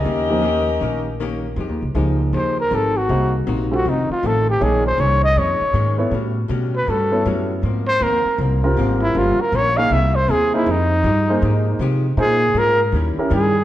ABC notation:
X:1
M:4/4
L:1/8
Q:"Swing" 1/4=158
K:Ebmix
V:1 name="Trumpet"
z8 | [K:Fm] z4 c B =A _G- | _G z2 G E F =A =G | A c d e d3 z |
z3 =B =A2 z2 | z c B2 z3 =E | F B d f =e c ^G =E | E6 z2 |
A2 B z3 A2 |]
V:2 name="Saxophone section"
[DGBe]6 z2 | [K:Fm] z8 | z8 | z8 |
z8 | z8 | z8 | z8 |
z8 |]
V:3 name="Grand piano"
z [F,B,EG] z6 | [K:Fm] z2 [F,B,EA]3 z3 | [B,EAc] z2 [G,CF=A] z4 | [B,EAd] z6 [=B,=E=Ad] |
z4 z [=B,=E=A^c]3 | z4 z [G,CFB]3 | [G,CFB] z2 [B,EAe] z3 [B,^D^Gc] | z3 [B,EAc]3 z2 |
[B,EAc] z4 [D_FGB] z2 |]
V:4 name="Hollow-body jazz guitar"
[E,B,DG] z [E,B,DG] z [E,B,DG] z [E,B,DG] z | [K:Fm] [F,A,EG] z [F,A,EG] z [F,A,EG] z [F,A,EG] z | [C,B,E_G] z [C,B,EG] z [F,,E,=A,C] z [F,,E,A,C] z | [B,,E,A,D] z [B,,E,A,D] z [B,,E,A,D] z [B,,E,A,D] z |
[=A,,G,^C^F] z [A,,G,CF] z [A,,G,CF] z [A,,G,CF] z | [A,,F,B,C] z [A,,F,B,C] z [A,,F,B,C] z [A,,F,B,C] z | [G,,F,B,D] z [G,,F,B,D] z [C,B,=E^G] z [C,B,EG] z | [F,A,EG] z [F,A,EG] z [F,A,EG] z [F,A,EG] z |
[B,,A,DF] z [B,,A,DF] z [E,G,D_F] z [E,G,DF] z |]
V:5 name="Upright bass" clef=bass
E,,4 B,,,4 | [K:Fm] (3F,, E,, C,, D,,2 E,,2 A,,,2 | C,,2 B,,,2 F,,, z =A,,,2 | B,,,2 C,,2 F,, z A,,2 |
=A,,2 =B,,2 G,,2 ^F,,2 | A,,2 E,, z C,,2 A,,,2 | G,,, z B,,,2 C,,2 ^D,,2 | F,,2 G,,2 A,,2 C,2 |
B,,2 A,,2 E,, z G,,2 |]